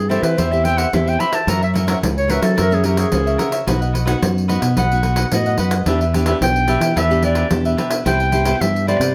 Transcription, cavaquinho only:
0.10 0.22 E4 medium
0.10 0.23 G4 medium
0.10 0.22 C5 medium
0.10 0.21 E5 medium
0.22 0.36 G4 soft
0.22 0.36 C5 soft
0.22 0.36 E5 soft
0.37 0.63 E4 medium
0.37 0.63 G4 medium
0.37 0.64 C5 medium
0.37 0.64 E5 medium
0.64 0.75 E4 soft
0.64 0.75 G4 soft
0.64 0.76 C5 medium
0.64 0.76 E5 medium
0.77 0.87 E4 medium
0.77 0.87 G4 medium
0.77 0.87 C5 medium
0.77 0.87 E5 medium
1.07 1.18 G4 soft
1.07 1.18 C5 soft
1.07 1.19 E5 soft
1.19 1.32 E4 medium
1.19 1.32 G4 medium
1.19 1.31 C5 medium
1.19 1.30 E5 medium
1.32 1.46 G4 soft
1.32 1.45 E5 medium
1.47 1.60 F#4 medium
1.47 1.60 A#4 medium
1.47 1.60 C#5 medium
1.47 1.60 E5 medium
1.61 1.73 A#4 soft
1.61 1.74 C#5 soft
1.61 1.74 E5 soft
1.74 1.86 F#4 medium
1.74 1.87 A#4 medium
1.74 1.87 C#5 medium
1.74 1.88 E5 medium
1.88 1.97 F#4 medium
1.88 1.97 A#4 medium
1.88 1.97 C#5 medium
1.88 1.98 E5 medium
2.29 2.42 F#4 medium
2.29 2.42 A#4 medium
2.29 2.42 C#5 medium
2.29 2.40 E5 medium
2.42 2.56 A#4 soft
2.42 2.56 C#5 soft
2.42 2.55 E5 soft
2.57 2.83 F#4 medium
2.57 2.84 A#4 medium
2.57 2.84 C#5 medium
2.57 2.84 E5 medium
2.84 2.96 F#4 medium
2.84 2.97 A#4 medium
2.84 2.97 C#5 medium
2.84 2.97 E5 medium
2.97 3.07 F#4 medium
2.97 3.07 A#4 medium
2.97 3.07 C#5 medium
2.97 3.07 E5 medium
3.26 3.37 A#4 soft
3.26 3.38 C#5 soft
3.26 3.38 E5 medium
3.38 3.51 F#4 medium
3.38 3.51 A#4 medium
3.38 3.51 C#5 medium
3.38 3.50 E5 medium
3.52 3.66 A#4 soft
3.52 3.65 C#5 soft
3.52 3.65 E5 medium
3.67 3.79 F#4 medium
3.67 3.80 B4 medium
3.67 3.80 D#5 medium
3.67 3.79 F#5 medium
3.81 3.92 B4 soft
3.81 3.93 D#5 soft
3.81 3.93 F#5 soft
3.93 4.04 F#4 medium
3.93 4.04 B4 medium
3.93 4.05 D#5 medium
3.93 4.05 F#5 medium
4.05 4.16 F#4 medium
4.05 4.16 B4 medium
4.05 4.16 D#5 medium
4.05 4.16 F#5 medium
4.48 4.61 F#4 medium
4.48 4.61 B4 medium
4.48 4.60 D#5 medium
4.48 4.59 F#5 medium
4.60 4.75 B4 soft
4.60 4.75 D#5 soft
4.60 4.74 F#5 medium
4.76 5.02 F#4 medium
4.76 5.02 B4 medium
4.76 5.03 D#5 medium
4.76 5.03 F#5 medium
5.03 5.15 F#4 soft
5.03 5.16 B4 soft
5.03 5.16 D#5 medium
5.03 5.16 F#5 medium
5.17 5.26 F#4 medium
5.17 5.26 B4 medium
5.17 5.27 D#5 medium
5.17 5.26 F#5 medium
5.46 5.58 B4 soft
5.46 5.58 D#5 soft
5.46 5.58 F#5 soft
5.58 5.71 F#4 medium
5.58 5.71 B4 medium
5.58 5.71 D#5 medium
5.58 5.70 F#5 medium
5.71 5.85 B4 soft
5.71 5.85 D#5 soft
5.71 5.85 F#5 soft
5.86 5.99 D4 medium
5.86 5.99 G4 medium
5.86 5.99 B4 medium
5.86 6.00 E5 medium
6.01 6.12 G4 soft
6.01 6.14 B4 soft
6.01 6.13 E5 soft
6.13 6.25 D4 medium
6.13 6.25 G4 medium
6.13 6.26 B4 medium
6.13 6.26 E5 medium
6.26 6.36 D4 medium
6.26 6.36 G4 medium
6.26 6.36 B4 medium
6.26 6.36 E5 medium
6.67 6.81 D4 medium
6.67 6.81 G4 medium
6.67 6.80 B4 medium
6.67 6.79 E5 medium
6.81 6.95 G4 soft
6.81 6.94 B4 soft
6.81 6.94 E5 medium
6.96 7.21 D4 medium
6.96 7.22 G4 medium
6.96 7.23 B4 medium
6.96 7.23 E5 medium
7.22 7.35 D4 medium
7.22 7.34 G4 medium
7.22 7.35 B4 medium
7.22 7.35 E5 medium
7.36 7.46 D4 medium
7.36 7.45 G4 medium
7.36 7.46 B4 medium
7.36 7.46 E5 medium
7.65 7.76 G4 soft
7.65 7.77 B4 soft
7.65 7.77 E5 medium
7.77 7.90 D4 medium
7.77 7.90 G4 medium
7.77 7.90 B4 medium
7.77 7.89 E5 medium
7.90 8.05 G4 soft
7.90 8.04 B4 soft
7.90 8.04 E5 medium
8.05 8.18 E4 medium
8.05 8.19 B4 medium
8.05 8.18 C5 medium
8.05 8.19 G5 medium
8.20 8.32 B4 soft
8.20 8.32 C5 soft
8.20 8.33 G5 medium
8.31 8.45 E4 medium
8.31 8.45 B4 medium
8.31 8.44 C5 medium
8.31 8.45 G5 medium
8.46 8.55 E4 medium
8.46 8.56 B4 medium
8.46 8.55 C5 medium
8.46 8.56 G5 medium
8.87 9.00 E4 medium
8.87 9.00 B4 medium
8.87 9.01 C5 medium
8.87 8.99 G5 medium
9.00 9.14 B4 medium
9.00 9.15 C5 soft
9.00 9.14 G5 soft

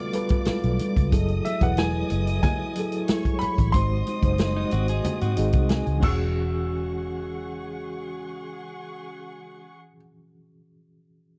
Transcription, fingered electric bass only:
0.48 muted fingered electric bass stroke medium
0.64 0.77 B1 medium
0.97 1.10 C#2 loud
1.13 1.39 F#1 loud
1.62 2.02 E1 medium
2.12 2.38 F#1 loud
3.42 muted fingered electric bass stroke soft
3.59 3.72 A1 loud
3.74 4.01 G#1 loud
4.23 4.64 F#1 medium
4.73 4.99 G#1 medium
5.22 5.35 G#2 medium
5.38 5.51 G#1 medium
5.54 5.81 C2 medium
5.87 6.00 C#2 medium
6.03 9.95 E1 loud

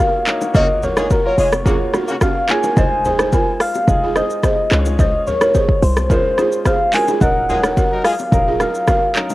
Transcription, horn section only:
0.55 0.66 C#3 loud
0.55 0.66 A#3 loud
0.55 0.66 F#4 loud
0.97 1.08 G#3 medium
0.97 1.08 F4 medium
0.97 1.08 G#4 medium
1.25 1.36 F#3 medium
1.25 1.35 F4 medium
1.25 1.35 A#4 loud
1.38 1.50 G#3 medium
1.38 1.50 F4 medium
1.38 1.50 G#4 medium
1.66 1.77 C#3 medium
1.66 1.77 A#3 medium
1.66 1.77 F#4 medium
2.08 2.16 C#3 medium
2.08 2.16 A#3 medium
2.08 2.16 F#4 medium
7.49 7.61 G#3 medium
7.49 7.61 F4 medium
7.49 7.61 G#4 medium
7.91 8.02 F#3 medium
7.91 8.02 D#4 medium
7.91 8.02 A#4 medium
8.05 8.13 G#3 medium
8.05 8.13 F4 medium
8.05 8.13 G#4 medium

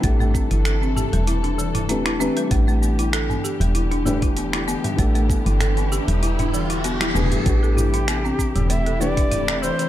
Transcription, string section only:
0.00 2.47 C3 medium
0.00 2.47 E3 medium
0.00 2.47 A3 medium
0.04 2.49 A4 medium
2.51 7.42 D3 medium
2.51 7.42 B3 medium
2.51 7.42 G4 medium
4.98 7.43 E4 medium
7.46 9.89 C3 medium
7.46 9.89 A3 medium
7.46 9.89 E4 medium
7.46 9.89 G4 medium

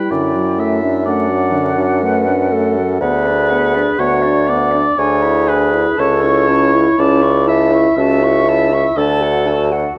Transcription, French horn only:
0.00 0.11 G3 medium
0.11 0.36 D3 medium
0.35 0.59 F#3 medium
0.58 0.83 A3 medium
0.82 1.07 D4 medium
1.06 1.31 A3 medium
1.29 1.55 F#3 medium
1.53 1.79 D3 medium
1.78 2.04 F#3 medium
2.02 2.28 A3 medium
2.26 2.53 D4 medium
2.51 2.78 A3 medium
2.77 3.01 F#3 medium
3.03 3.29 B3 medium
3.28 3.53 D4 medium
3.52 3.78 B3 medium
3.76 4.00 D4 medium
4.00 4.27 B3 medium
4.25 4.51 D4 medium
4.50 4.76 B3 medium
4.74 4.98 D4 medium
4.99 5.25 D4 medium
5.24 5.50 E4 medium
5.48 5.75 D4 medium
5.74 5.98 E4 medium
5.99 6.27 C#4 medium
6.25 6.51 E4 medium
6.49 6.76 C#4 medium
6.74 6.98 E4 medium
6.98 7.25 C#4 medium
7.23 7.49 E4 medium
7.47 7.73 C#4 medium
7.72 7.96 E4 medium
7.97 8.24 C#4 medium
8.22 8.48 E4 medium
8.46 8.73 C#4 medium
8.71 8.96 E4 medium
8.97 9.23 A4 medium
9.21 9.48 F#4 medium
9.47 9.73 A4 medium
9.71 9.98 F#4 medium

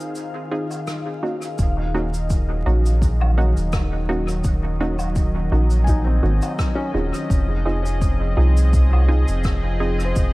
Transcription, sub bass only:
1.59 2.63 D#1 loud
2.66 3.53 A#1 medium
3.56 4.41 D#1 loud
4.45 5.49 D#1 medium
5.51 6.20 A#1 medium
6.23 6.40 G#1 loud
6.94 7.11 D#1 medium
7.30 8.34 F1 loud
8.37 9.24 C2 medium
9.28 10.13 F1 loud
10.16 10.33 F1 medium

